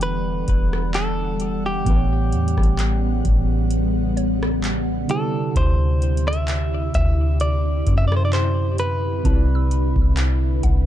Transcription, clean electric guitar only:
0, 0, Header, 1, 2, 480
1, 0, Start_track
1, 0, Tempo, 923077
1, 970, Time_signature, 4, 2, 24, 8
1, 5647, End_track
2, 0, Start_track
2, 0, Title_t, "Clean electric guitar"
2, 0, Program_c, 0, 27
2, 14, Note_on_c, 0, 71, 107
2, 471, Note_off_c, 0, 71, 0
2, 494, Note_on_c, 0, 69, 98
2, 861, Note_off_c, 0, 69, 0
2, 864, Note_on_c, 0, 67, 79
2, 1561, Note_off_c, 0, 67, 0
2, 2656, Note_on_c, 0, 69, 98
2, 2894, Note_off_c, 0, 69, 0
2, 2896, Note_on_c, 0, 72, 103
2, 3262, Note_off_c, 0, 72, 0
2, 3264, Note_on_c, 0, 76, 109
2, 3608, Note_off_c, 0, 76, 0
2, 3614, Note_on_c, 0, 76, 99
2, 3835, Note_off_c, 0, 76, 0
2, 3853, Note_on_c, 0, 74, 105
2, 4126, Note_off_c, 0, 74, 0
2, 4148, Note_on_c, 0, 76, 86
2, 4197, Note_off_c, 0, 76, 0
2, 4200, Note_on_c, 0, 74, 81
2, 4244, Note_off_c, 0, 74, 0
2, 4246, Note_on_c, 0, 72, 78
2, 4287, Note_off_c, 0, 72, 0
2, 4289, Note_on_c, 0, 74, 84
2, 4331, Note_off_c, 0, 74, 0
2, 4333, Note_on_c, 0, 72, 96
2, 4554, Note_off_c, 0, 72, 0
2, 4574, Note_on_c, 0, 71, 90
2, 5511, Note_off_c, 0, 71, 0
2, 5647, End_track
0, 0, End_of_file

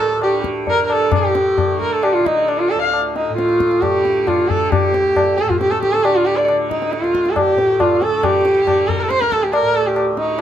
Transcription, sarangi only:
0, 0, Header, 1, 2, 480
1, 0, Start_track
1, 0, Tempo, 454201
1, 1189, Time_signature, 4, 2, 24, 8
1, 3103, Tempo, 446097
1, 5983, Tempo, 434783
1, 11281, End_track
2, 0, Start_track
2, 0, Title_t, "Sarangi"
2, 0, Program_c, 0, 110
2, 0, Note_on_c, 0, 69, 92
2, 227, Note_off_c, 0, 69, 0
2, 241, Note_on_c, 0, 67, 81
2, 458, Note_off_c, 0, 67, 0
2, 737, Note_on_c, 0, 70, 100
2, 892, Note_off_c, 0, 70, 0
2, 901, Note_on_c, 0, 70, 67
2, 968, Note_on_c, 0, 69, 96
2, 984, Note_off_c, 0, 70, 0
2, 1199, Note_off_c, 0, 69, 0
2, 1214, Note_on_c, 0, 67, 87
2, 1879, Note_off_c, 0, 67, 0
2, 1915, Note_on_c, 0, 70, 79
2, 2033, Note_on_c, 0, 69, 83
2, 2049, Note_off_c, 0, 70, 0
2, 2152, Note_on_c, 0, 67, 88
2, 2167, Note_off_c, 0, 69, 0
2, 2263, Note_on_c, 0, 65, 89
2, 2279, Note_off_c, 0, 67, 0
2, 2389, Note_on_c, 0, 63, 90
2, 2405, Note_off_c, 0, 65, 0
2, 2620, Note_on_c, 0, 62, 89
2, 2636, Note_off_c, 0, 63, 0
2, 2733, Note_on_c, 0, 65, 94
2, 2749, Note_off_c, 0, 62, 0
2, 2855, Note_on_c, 0, 69, 100
2, 2871, Note_off_c, 0, 65, 0
2, 2966, Note_off_c, 0, 69, 0
2, 2972, Note_on_c, 0, 77, 91
2, 3088, Note_off_c, 0, 77, 0
2, 3344, Note_on_c, 0, 63, 81
2, 3565, Note_off_c, 0, 63, 0
2, 3571, Note_on_c, 0, 65, 86
2, 4047, Note_on_c, 0, 67, 94
2, 4063, Note_off_c, 0, 65, 0
2, 4542, Note_on_c, 0, 65, 85
2, 4558, Note_off_c, 0, 67, 0
2, 4772, Note_on_c, 0, 69, 95
2, 4788, Note_off_c, 0, 65, 0
2, 4958, Note_off_c, 0, 69, 0
2, 4958, Note_on_c, 0, 69, 70
2, 5009, Note_on_c, 0, 67, 104
2, 5025, Note_off_c, 0, 69, 0
2, 5726, Note_on_c, 0, 69, 92
2, 5742, Note_off_c, 0, 67, 0
2, 5853, Note_on_c, 0, 65, 83
2, 5869, Note_off_c, 0, 69, 0
2, 5964, Note_off_c, 0, 65, 0
2, 5970, Note_on_c, 0, 67, 95
2, 6088, Note_on_c, 0, 69, 97
2, 6105, Note_off_c, 0, 67, 0
2, 6211, Note_off_c, 0, 69, 0
2, 6218, Note_on_c, 0, 67, 94
2, 6331, Note_on_c, 0, 69, 93
2, 6348, Note_off_c, 0, 67, 0
2, 6451, Note_on_c, 0, 67, 99
2, 6468, Note_off_c, 0, 69, 0
2, 6580, Note_on_c, 0, 65, 98
2, 6596, Note_off_c, 0, 67, 0
2, 6695, Note_on_c, 0, 67, 104
2, 6711, Note_off_c, 0, 65, 0
2, 6815, Note_on_c, 0, 74, 88
2, 6832, Note_off_c, 0, 67, 0
2, 6945, Note_off_c, 0, 74, 0
2, 7183, Note_on_c, 0, 63, 82
2, 7427, Note_on_c, 0, 65, 87
2, 7444, Note_off_c, 0, 63, 0
2, 7850, Note_on_c, 0, 69, 60
2, 7867, Note_off_c, 0, 65, 0
2, 7932, Note_on_c, 0, 67, 98
2, 7949, Note_off_c, 0, 69, 0
2, 8401, Note_on_c, 0, 65, 88
2, 8418, Note_off_c, 0, 67, 0
2, 8646, Note_on_c, 0, 69, 98
2, 8663, Note_off_c, 0, 65, 0
2, 8882, Note_on_c, 0, 67, 106
2, 8898, Note_off_c, 0, 69, 0
2, 9591, Note_on_c, 0, 70, 93
2, 9607, Note_off_c, 0, 67, 0
2, 9717, Note_on_c, 0, 69, 90
2, 9733, Note_off_c, 0, 70, 0
2, 9826, Note_on_c, 0, 72, 113
2, 9842, Note_off_c, 0, 69, 0
2, 9951, Note_on_c, 0, 70, 109
2, 9968, Note_off_c, 0, 72, 0
2, 10076, Note_on_c, 0, 69, 100
2, 10092, Note_off_c, 0, 70, 0
2, 10198, Note_on_c, 0, 67, 93
2, 10215, Note_off_c, 0, 69, 0
2, 10302, Note_on_c, 0, 70, 103
2, 10319, Note_off_c, 0, 67, 0
2, 10552, Note_on_c, 0, 69, 98
2, 10569, Note_off_c, 0, 70, 0
2, 10680, Note_on_c, 0, 67, 83
2, 10696, Note_off_c, 0, 69, 0
2, 10793, Note_off_c, 0, 67, 0
2, 11037, Note_on_c, 0, 63, 85
2, 11281, Note_off_c, 0, 63, 0
2, 11281, End_track
0, 0, End_of_file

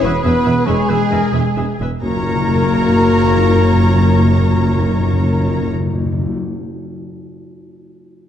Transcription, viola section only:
0, 0, Header, 1, 2, 480
1, 0, Start_track
1, 0, Key_signature, 6, "major"
1, 0, Tempo, 436999
1, 1717, Tempo, 479233
1, 2198, Time_signature, 12, 3, 24, 8
1, 8452, End_track
2, 0, Start_track
2, 0, Title_t, "Viola section"
2, 0, Program_c, 0, 48
2, 39, Note_on_c, 0, 71, 72
2, 41, Note_on_c, 0, 76, 70
2, 127, Note_off_c, 0, 71, 0
2, 129, Note_off_c, 0, 76, 0
2, 265, Note_on_c, 0, 71, 67
2, 265, Note_on_c, 0, 76, 70
2, 353, Note_off_c, 0, 71, 0
2, 353, Note_off_c, 0, 76, 0
2, 497, Note_on_c, 0, 71, 70
2, 499, Note_on_c, 0, 76, 64
2, 585, Note_off_c, 0, 71, 0
2, 587, Note_off_c, 0, 76, 0
2, 732, Note_on_c, 0, 71, 73
2, 733, Note_on_c, 0, 76, 71
2, 819, Note_off_c, 0, 71, 0
2, 821, Note_off_c, 0, 76, 0
2, 972, Note_on_c, 0, 71, 59
2, 978, Note_on_c, 0, 76, 64
2, 1060, Note_off_c, 0, 71, 0
2, 1066, Note_off_c, 0, 76, 0
2, 1222, Note_on_c, 0, 76, 61
2, 1224, Note_on_c, 0, 71, 61
2, 1310, Note_off_c, 0, 76, 0
2, 1312, Note_off_c, 0, 71, 0
2, 1458, Note_on_c, 0, 71, 61
2, 1460, Note_on_c, 0, 76, 61
2, 1546, Note_off_c, 0, 71, 0
2, 1548, Note_off_c, 0, 76, 0
2, 1712, Note_on_c, 0, 76, 57
2, 1714, Note_on_c, 0, 71, 56
2, 1793, Note_off_c, 0, 76, 0
2, 1794, Note_off_c, 0, 71, 0
2, 1960, Note_on_c, 0, 71, 54
2, 1962, Note_on_c, 0, 76, 54
2, 2041, Note_off_c, 0, 71, 0
2, 2042, Note_off_c, 0, 76, 0
2, 2195, Note_on_c, 0, 70, 84
2, 2201, Note_on_c, 0, 73, 82
2, 5846, Note_off_c, 0, 70, 0
2, 5849, Note_off_c, 0, 73, 0
2, 8452, End_track
0, 0, End_of_file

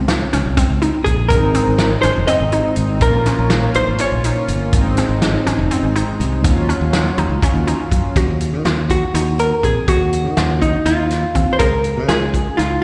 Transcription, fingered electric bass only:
0, 0, Header, 1, 2, 480
1, 0, Start_track
1, 0, Tempo, 490196
1, 1280, Time_signature, 7, 3, 24, 8
1, 12571, End_track
2, 0, Start_track
2, 0, Title_t, "Fingered electric bass"
2, 0, Program_c, 0, 33
2, 0, Note_on_c, 0, 37, 82
2, 237, Note_off_c, 0, 37, 0
2, 327, Note_on_c, 0, 37, 78
2, 416, Note_off_c, 0, 37, 0
2, 450, Note_on_c, 0, 36, 83
2, 537, Note_off_c, 0, 36, 0
2, 688, Note_on_c, 0, 37, 75
2, 867, Note_off_c, 0, 37, 0
2, 1039, Note_on_c, 0, 34, 69
2, 1276, Note_on_c, 0, 32, 92
2, 1291, Note_off_c, 0, 34, 0
2, 1549, Note_off_c, 0, 32, 0
2, 1638, Note_on_c, 0, 32, 80
2, 1910, Note_off_c, 0, 32, 0
2, 1995, Note_on_c, 0, 32, 77
2, 2086, Note_off_c, 0, 32, 0
2, 2114, Note_on_c, 0, 29, 95
2, 2205, Note_off_c, 0, 29, 0
2, 2354, Note_on_c, 0, 32, 78
2, 2536, Note_off_c, 0, 32, 0
2, 2713, Note_on_c, 0, 32, 76
2, 2947, Note_off_c, 0, 32, 0
2, 2947, Note_on_c, 0, 34, 94
2, 3222, Note_off_c, 0, 34, 0
2, 3316, Note_on_c, 0, 34, 80
2, 3587, Note_off_c, 0, 34, 0
2, 3671, Note_on_c, 0, 34, 90
2, 3762, Note_off_c, 0, 34, 0
2, 3792, Note_on_c, 0, 32, 94
2, 3883, Note_off_c, 0, 32, 0
2, 4034, Note_on_c, 0, 34, 80
2, 4214, Note_off_c, 0, 34, 0
2, 4389, Note_on_c, 0, 31, 76
2, 4631, Note_off_c, 0, 31, 0
2, 4631, Note_on_c, 0, 32, 93
2, 4903, Note_off_c, 0, 32, 0
2, 4984, Note_on_c, 0, 32, 84
2, 5258, Note_off_c, 0, 32, 0
2, 5351, Note_on_c, 0, 32, 83
2, 5441, Note_off_c, 0, 32, 0
2, 5472, Note_on_c, 0, 29, 95
2, 5562, Note_off_c, 0, 29, 0
2, 5709, Note_on_c, 0, 32, 74
2, 5890, Note_off_c, 0, 32, 0
2, 6070, Note_on_c, 0, 36, 77
2, 6309, Note_off_c, 0, 36, 0
2, 6309, Note_on_c, 0, 39, 93
2, 6581, Note_off_c, 0, 39, 0
2, 6668, Note_on_c, 0, 39, 86
2, 6940, Note_off_c, 0, 39, 0
2, 7030, Note_on_c, 0, 39, 80
2, 7120, Note_off_c, 0, 39, 0
2, 7142, Note_on_c, 0, 37, 89
2, 7235, Note_off_c, 0, 37, 0
2, 7383, Note_on_c, 0, 39, 73
2, 7567, Note_off_c, 0, 39, 0
2, 7746, Note_on_c, 0, 42, 74
2, 7838, Note_off_c, 0, 42, 0
2, 7988, Note_on_c, 0, 39, 92
2, 8347, Note_on_c, 0, 51, 68
2, 8361, Note_off_c, 0, 39, 0
2, 8438, Note_off_c, 0, 51, 0
2, 8466, Note_on_c, 0, 39, 81
2, 8832, Note_off_c, 0, 39, 0
2, 8950, Note_on_c, 0, 39, 73
2, 9315, Note_off_c, 0, 39, 0
2, 9435, Note_on_c, 0, 34, 70
2, 9525, Note_off_c, 0, 34, 0
2, 9674, Note_on_c, 0, 39, 93
2, 10030, Note_on_c, 0, 51, 64
2, 10044, Note_off_c, 0, 39, 0
2, 10122, Note_off_c, 0, 51, 0
2, 10158, Note_on_c, 0, 39, 80
2, 10522, Note_off_c, 0, 39, 0
2, 10632, Note_on_c, 0, 39, 75
2, 10999, Note_off_c, 0, 39, 0
2, 11116, Note_on_c, 0, 39, 66
2, 11209, Note_off_c, 0, 39, 0
2, 11356, Note_on_c, 0, 37, 85
2, 11721, Note_on_c, 0, 49, 70
2, 11735, Note_off_c, 0, 37, 0
2, 11812, Note_off_c, 0, 49, 0
2, 11833, Note_on_c, 0, 37, 84
2, 12202, Note_off_c, 0, 37, 0
2, 12324, Note_on_c, 0, 37, 75
2, 12571, Note_off_c, 0, 37, 0
2, 12571, End_track
0, 0, End_of_file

